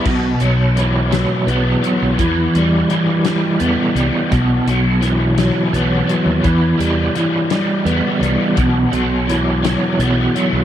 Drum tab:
CC |x-----|------|------|------|
HH |-xxxxx|xxxxxx|xxxxxx|xxxxxx|
SD |---o--|---o--|---o--|---o--|
BD |o-----|o-----|o-----|o-----|

CC |------|
HH |xxxxxx|
SD |---o--|
BD |o-----|